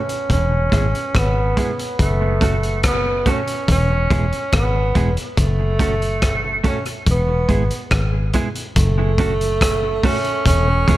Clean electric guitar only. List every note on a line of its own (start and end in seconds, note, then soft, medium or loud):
0.72 0.85 G#3 medium
0.72 0.86 B3 medium
0.72 0.86 E4 medium
0.72 0.86 G#4 medium
1.57 1.70 G#3 medium
1.57 1.70 B3 medium
1.57 1.71 E4 medium
1.57 1.71 G#4 medium
2.42 2.55 A3 medium
2.42 2.55 C#4 medium
2.42 2.55 F#4 medium
2.42 2.55 A4 medium
3.26 3.39 A3 medium
3.26 3.40 C#4 medium
3.26 3.40 F#4 medium
3.26 3.40 A4 medium
4.11 4.24 G#3 medium
4.11 4.24 B3 medium
4.11 4.24 E4 medium
4.11 4.25 G#4 medium
4.95 5.08 G#3 medium
4.95 5.09 B3 medium
4.95 5.09 E4 medium
4.95 5.09 G#4 medium
5.79 5.93 A3 medium
5.79 5.93 C#4 medium
5.79 5.94 F#4 medium
5.79 5.94 A4 medium
6.64 6.77 A3 medium
6.64 6.78 C#4 medium
6.64 6.78 F#4 medium
6.64 6.78 A4 medium
7.49 7.62 G#3 medium
7.49 7.62 B3 medium
7.49 7.63 E4 medium
7.49 7.63 G#4 medium
8.34 8.47 G#3 medium
8.34 8.47 B3 medium
8.34 8.48 E4 medium
8.34 8.48 G#4 medium
9.19 9.32 A3 medium
9.19 9.32 C#4 medium
9.19 9.33 F#4 medium
9.19 9.33 A4 medium
10.04 10.17 A3 medium
10.04 10.17 C#4 medium
10.04 10.17 F#4 medium
10.04 10.18 A4 medium
10.88 10.97 G#3 medium
10.88 10.97 B3 medium
10.88 10.97 E4 medium
10.88 10.97 G#4 medium